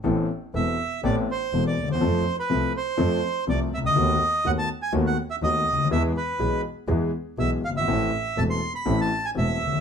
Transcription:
<<
  \new Staff \with { instrumentName = "Bandoneon" } { \time 4/4 \key a \minor \tempo 4 = 122 r4 e''4 d''8 c''8. d''8 c''16~ | c''8. b'8. c''4. d''8 e''16 dis''16~ | dis''4 fis''16 a''8 gis''8 fis''8 e''16 dis''4 | e''8 b'4 r4. e''8 f''16 e''16~ |
e''4 a''16 c'''8 b''8 a''8 gis''16 e''4 | }
  \new Staff \with { instrumentName = "Grand piano" } { \clef bass \time 4/4 \key a \minor <a,, a, e b c' a'>8 r8 <e,, e, e b c' a'>8 r8 <a,, a, e b c' a'>8 r8 <e,, e, e b c' a'>8 r32 d,32 dis,32 e,32 | <f, f a c' a'>8 r8 <c, c f a c' a'>8 r8 <f, f a c' a'>8 r8 <c, c f a c' a'>8 r32 c,32 cis,32 d,32 | <dis, dis a b fis'>8 r8 <dis, dis a b fis'>8 r8 <dis, dis a b fis'>8 r8 <dis, dis a b fis'>8 r32 cis,32 d,32 dis,32 | <e, e gis b gis'>8 r8 <b,, b, e gis b gis'>8 r8 <e, e gis b gis'>8 r8 <b,, b, e gis b gis'>8 r32 fis,,32 g,,32 gis,,32 |
<a,, a, e a c' a'>8 r8 <e,, e, e a c' a'>8 r8 <a,, a, e a c' a'>8 r8 <e,, e, e a c' a'>8 r32 d,32 dis,32 r32 | }
  \new Staff \with { instrumentName = "Double bass" } { \clef bass \time 4/4 \key a \minor a,,8 r8 e,,8 r8 a,,8 r8 e,,8 dis,8 | f,8 r8 c,8 r8 f,8 r8 c,8 cis,8 | dis,8 r8 dis,8 r8 dis,8 r8 dis,8 d,8 | e,8 r8 b,,8 r8 e,8 r8 b,,8 g,,8 |
a,,8 r8 e,,8 r8 a,,8 r8 e,,8 dis,8 | }
>>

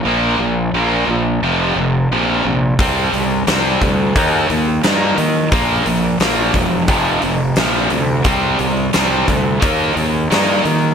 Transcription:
<<
  \new Staff \with { instrumentName = "Distorted electric guitar" } { \clef bass \time 4/4 \key c \minor \tempo 4 = 88 <bes, f bes>8 <bes, f>8 <bes, f bes>8 <bes, f>8 <f, c f>8 <f, c>8 <f, c f>8 <f, c>8 | <c g c'>8 <c g>8 <c g c'>8 <c g>8 <ees bes ees'>8 <ees bes>8 <ees bes ees'>8 <ees bes>8 | <bes, f bes>8 <bes, f>8 <bes, f bes>8 <bes, f>8 <f, c f>8 <f, c>8 <f, c f>8 <f, c>8 | <c g c'>8 <c g>8 <c g c'>8 <c g>8 <ees bes ees'>8 <ees bes>8 <ees bes ees'>8 <ees bes>8 | }
  \new Staff \with { instrumentName = "Fingered electric bass" } { \clef bass \time 4/4 \key c \minor bes,,8 bes,,8 bes,,8 bes,,8 f,,8 f,,8 bes,,8 bes,,8 | c,8 c,8 c,8 d,8 ees,8 ees,8 g,8 ees8 | bes,,8 bes,,8 bes,,8 e,,8 f,,8 f,,8 bes,,8 d,8 | c,8 c,8 c,8 d,8 ees,8 ees,8 g,8 ees8 | }
  \new DrumStaff \with { instrumentName = "Drums" } \drummode { \time 4/4 r4 r4 r4 r4 | <hho bd>8 hho8 <hho sn>8 <hho bd>8 <hho bd>8 hho8 <hho sn>8 hho8 | <hho bd>8 hho8 <hho sn>8 <hho bd>8 <hho bd>8 hho8 <hho sn>8 hho8 | <hho bd>8 hho8 <hho sn>8 <hho bd>8 <hho bd>8 hho8 <hho sn>8 hho8 | }
>>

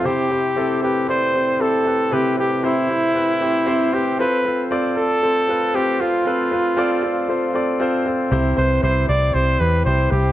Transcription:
<<
  \new Staff \with { instrumentName = "Trumpet" } { \time 4/4 \key f \lydian \tempo 4 = 116 g'4. g'8 c''4 a'4 | g'8 g'8 e'2~ e'8 g'8 | b'4 r8 a'4. g'8 f'8~ | f'2~ f'8 r4. |
r8 c''8 c''8 d''8 c''8 b'8 c''8 g'8 | }
  \new Staff \with { instrumentName = "Grand piano" } { \time 4/4 \key f \lydian <c' e' g' c''>8 <c' e' g' c''>8 <c' e' g' a'>8 <c' e' g' b'>8 <c' e' g' d''>8 <c' e' g' c''>8 <c' e' g' a'>8 <c' e' g' b'>8 | <c' e' g' b'>8 <c' e' g' a'>8 <c' e' g' c''>8 <c' e' g' c''>8 <c' e' g' b'>8 <c' e' g' c''>8 <c' e' g' c''>8 <c' e' g' b'>8 | <c' f' a' c''>8 <c' f' a' c''>8 <c' f' a' d''>8 <c' f' a' c''>8 <c' f' a' c''>8 <c' f' a' b'>8 <c' f' a' c''>8 <c' f' a' c''>8 | <c' f' a' b'>8 <c' f' a' b'>8 <c' f' a' d''>8 <c' f' a' c''>8 <c' f' a' c''>8 <c' f' a' d''>8 <c' f' a' c''>8 <c' f' a' c''>8 |
<c' e' g' c''>8 <c' e' g' b'>8 <c' e' g' c''>8 <c' e' g' d''>8 <c' e' g' c''>8 <c' e' g' c''>8 <c' e' g' c''>8 <c' e' g' c''>8 | }
  \new Staff \with { instrumentName = "Grand piano" } { \clef bass \time 4/4 \key f \lydian c4. r2 r8 | c4. r2 r8 | r1 | r1 |
c4. r2 r8 | }
  \new Staff \with { instrumentName = "Fingered electric bass" } { \clef bass \time 4/4 \key f \lydian r1 | r1 | r1 | r1 |
c,8 c,8 c,8 c,8 c,8 e,8 c,8 c,8 | }
>>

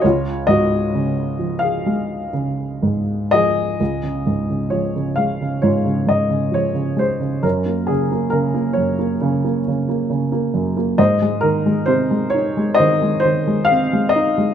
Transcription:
<<
  \new Staff \with { instrumentName = "Upright piano" } { \time 4/4 \key des \major \tempo 4 = 66 << { des''8 ees''4~ ees''16 f''4.~ f''16 ees''8~ | ees''8 r8 des''8 f''8 des''8 ees''8 des''8 c''8 | bes'8 aes'8 bes'8 des''4 r4. | ees''8 bes'8 c''8 des''8 ees''8 c''8 f''8 ees''8 | } \\ { f'8 ges'4~ ges'16 aes'4.~ aes'16 aes'8~ | aes'4. r8 f'2 | des'2 r2 | c''2 c''2 | } >> }
  \new Staff \with { instrumentName = "Upright piano" } { \clef bass \time 4/4 \key des \major des,8 aes,8 des8 f8 aes8 des8 aes,8 f8 | des,16 des16 aes,16 des16 f16 des16 aes16 des16 aes,16 des16 aes,16 des16 f16 des16 aes16 des16 | ges,16 bes16 des16 bes16 des16 bes16 ges,16 bes16 des16 bes16 des16 bes16 des16 bes16 ges,16 bes16 | aes,16 aes16 ees16 aes16 c16 aes16 ees'16 aes16 ees16 aes16 ees16 aes16 c'16 aes16 ees'16 aes16 | }
>>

